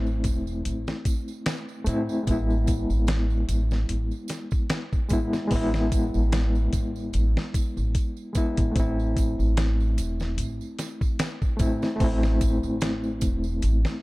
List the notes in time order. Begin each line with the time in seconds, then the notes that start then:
Already playing: A1 A3 C4 E4
0.06 tambourine
0.24 E1, kick, closed hi-hat, tambourine
0.47 tambourine
0.65 A1, closed hi-hat, tambourine
0.87 snare, tambourine
1.05 kick, closed hi-hat, tambourine
1.28 tambourine
1.46 snare, closed hi-hat, tambourine
1.69 tambourine
1.84 A2 A3 C4, closed hi-hat, tambourine
1.89 E4
2.09 tambourine
2.23 G#3, tambourine
2.27 A1 B3 E4, kick, closed hi-hat
2.50 tambourine
2.67 kick, closed hi-hat, tambourine
2.90 A1, tambourine
3.07 snare, closed hi-hat, tambourine
3.30 tambourine
3.49 A1, closed hi-hat, tambourine
3.71 snare, tambourine
3.89 A1, closed hi-hat, tambourine
4.11 tambourine
4.28 snare, closed hi-hat, tambourine
4.51 kick, tambourine
4.70 snare, closed hi-hat, tambourine
4.93 kick, tambourine
5.09 A2 G#3 B3, kick, closed hi-hat, tambourine
5.13 E4
5.33 snare, tambourine
5.47 A1 G#3, kick, open hi-hat, tambourine
5.51 B3
5.56 E4
5.74 snare, tambourine
5.92 kick, closed hi-hat, tambourine
6.14 A1, tambourine
6.32 snare, closed hi-hat, tambourine
6.55 tambourine
6.73 A1, kick, closed hi-hat, tambourine
6.96 tambourine
7.13 A1, closed hi-hat, tambourine
7.37 snare, tambourine
7.54 kick, closed hi-hat, tambourine
7.77 A1, tambourine
7.95 kick, closed hi-hat, tambourine
8.17 tambourine
8.33 G#3 B3, kick, closed hi-hat, tambourine
8.37 E4
8.57 A1, kick, closed hi-hat, tambourine
8.72 A3
8.76 A1 C4, kick, closed hi-hat, tambourine
8.80 E4
8.99 tambourine
9.17 kick, closed hi-hat, tambourine
9.39 A1, tambourine
9.57 snare, closed hi-hat, tambourine
9.80 tambourine
9.97 E1, closed hi-hat, tambourine
10.20 snare, tambourine
10.37 A1, closed hi-hat, tambourine
10.61 tambourine
10.79 snare, closed hi-hat, tambourine
11.01 kick, tambourine
11.19 snare, closed hi-hat, tambourine
11.42 kick, tambourine
11.57 A2 A3 C4, kick, closed hi-hat, tambourine
11.61 E4
11.82 snare, tambourine
11.96 A3
12.00 A1 C4, kick, open hi-hat, tambourine
12.04 E4
12.23 snare, tambourine
12.41 kick, closed hi-hat, tambourine
12.63 A1, tambourine
12.81 snare, closed hi-hat, tambourine
13.04 tambourine
13.21 E1, kick, closed hi-hat, tambourine
13.44 tambourine
13.62 A1, closed hi-hat, tambourine
13.85 snare, tambourine